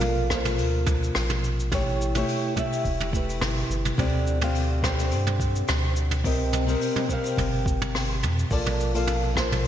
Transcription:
Already playing: A#1 A#3 F4 A4 F5
0.01 mid tom, open hi-hat, cabasa
0.29 A#3 F4 A4, kick, cross-stick, cabasa
0.34 C5
0.45 mid tom, open hi-hat, cabasa
0.58 D2, open hi-hat, cabasa
0.86 kick, mid tom, cabasa
1.04 cabasa
1.15 A#1, cross-stick, open hi-hat, cabasa
1.30 mid tom
1.44 cabasa
1.60 cabasa
1.72 A1 A3 E4 G4 C#5, kick, mid tom, open hi-hat, cabasa
2.02 cabasa
2.15 A3 E4 G4 C#5, mid tom, open hi-hat, cabasa
2.28 open hi-hat, cabasa
2.56 A3 E4 G4 E5, kick, mid tom, cabasa
2.72 open hi-hat, cabasa
2.85 E1, kick, open hi-hat, cabasa
3.01 mid tom
3.11 A3 E4 G4, kick, cabasa
3.16 B4
3.29 open hi-hat, cabasa
3.41 G1, cross-stick, mid tom, open hi-hat, cabasa
3.57 open hi-hat
3.70 G1, cabasa
3.85 mid tom, open hi-hat, cabasa
3.97 D2 D3 C4 G4 D5, kick, mid tom, open hi-hat, cabasa
4.27 cabasa
4.41 D3 C4 G4 F5, mid tom, open hi-hat, cabasa
4.55 open hi-hat, cabasa
4.82 D3 C4 G4, kick, cross-stick, mid tom, cabasa
4.86 C5
4.99 open hi-hat, cabasa
5.11 G2, open hi-hat, cabasa
5.27 mid tom
5.40 kick, cabasa
5.56 cabasa
5.68 D2, cross-stick, mid tom, open hi-hat, cabasa
5.97 cabasa
6.11 mid tom, cabasa
6.24 C2 C3 C4 A#4 D#5, kick, open hi-hat, cabasa
6.53 mid tom, cabasa
6.67 C3 C4 A#4 D#5, open hi-hat, cabasa
6.81 open hi-hat, cabasa
6.96 mid tom
7.08 C3 C4 A#4, kick, cabasa
7.13 F5
7.24 open hi-hat, cabasa
7.38 G1, kick, mid tom, open hi-hat, cabasa
7.66 kick, cabasa
7.82 mid tom, cabasa
7.95 cross-stick, open hi-hat, cabasa
8.23 F2, mid tom, cabasa
8.39 cabasa
8.51 A#1 A#3 F4 A4 D5, kick, open hi-hat, cabasa
8.66 mid tom
8.80 cabasa
8.94 A#3 F4 A4 F5, open hi-hat, cabasa
9.07 mid tom, open hi-hat, cabasa
9.34 A#3 F4 A4, kick, cross-stick, cabasa
9.39 C5
9.52 mid tom, open hi-hat, cabasa
9.64 D2, open hi-hat

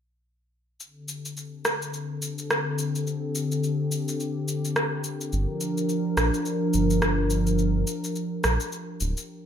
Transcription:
0.80 D3 C4 G4 A4, cabasa
1.08 cabasa
1.25 cabasa
1.37 cabasa
1.65 cross-stick, cabasa
1.82 cabasa
1.94 cabasa
2.22 cabasa
2.38 cabasa
2.51 cross-stick, cabasa
2.79 cabasa
2.95 cabasa
3.07 cabasa
3.35 cabasa
3.52 cabasa
3.64 cabasa
3.92 cabasa
4.08 cabasa
4.20 cabasa
4.48 cabasa
4.65 cabasa
4.76 cross-stick, cabasa
5.04 cabasa
5.21 cabasa
5.33 G1 F3 D4 A#4, cabasa
5.61 cabasa
5.78 cabasa
5.89 cabasa
6.17 A#1, cross-stick, cabasa
6.34 cabasa
6.46 cabasa
6.74 G1, cabasa
6.90 cabasa
7.02 cross-stick, cabasa
7.30 cabasa
7.47 cabasa
7.59 cabasa
7.87 cabasa
8.04 cabasa
8.16 cabasa
8.44 A#1, cross-stick, cabasa
8.60 cabasa
8.72 cabasa
9.00 D1, cabasa
9.17 cabasa

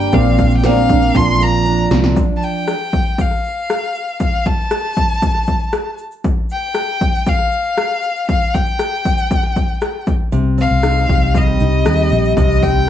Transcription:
Already playing: G2 G3 A#3 D4 G4 D5 G5
0.01 shaker
0.12 A#1 A#2 C4 A#4 D5 F5, kick, shaker
0.38 D4, kick, shaker
0.50 shaker
0.57 G5
0.63 C4 A#4 D5 F5, snare, shaker
0.89 D4, kick, shaker
1.02 shaker
1.15 A#1 F3 C6, kick, shaker
1.40 A#4 A#5, shaker
1.65 D4, shaker
1.91 C2 C4, snare, shaker
2.04 snare
2.16 kick, shaker
2.37 A5
2.42 G5, shaker
2.67 cross-stick, shaker
2.93 kick, shaker
3.18 F5, kick, shaker
3.31 cross-stick
3.44 shaker
3.69 cross-stick, shaker
3.94 shaker
4.08 shaker
4.20 F5, kick, shaker
4.45 A5, kick, shaker
4.71 cross-stick, shaker
4.96 kick, shaker
5.22 kick, shaker
5.34 cross-stick
5.47 kick, shaker
5.72 cross-stick, shaker
5.98 shaker
6.12 shaker
6.24 kick, shaker
6.50 G5, shaker
6.74 cross-stick, shaker
7.01 kick, shaker
7.26 F5, kick, shaker
7.39 cross-stick
7.52 shaker
7.77 cross-stick, shaker
8.03 shaker
8.16 shaker
8.28 F5, kick, shaker
8.54 G5, kick, shaker
8.66 shaker
8.79 cross-stick, shaker
9.05 kick, shaker
9.18 shaker
9.31 kick, shaker
9.43 cross-stick
9.56 kick, shaker
9.81 cross-stick, shaker
10.07 kick, shaker
10.32 C2 C3, shaker
10.58 C4 F5, shaker
10.71 C2
10.83 D#4, cross-stick, shaker
11.09 C2 G4, kick, shaker
11.34 G3 D#5, kick, shaker
11.47 cross-stick
11.60 C2 D#4, shaker
11.85 D#2 G4, cross-stick, shaker
12.11 A#1 D#4, shaker
12.25 shaker
12.37 C2 C3 D#5, kick, shaker
12.62 C4 G5, kick, shaker

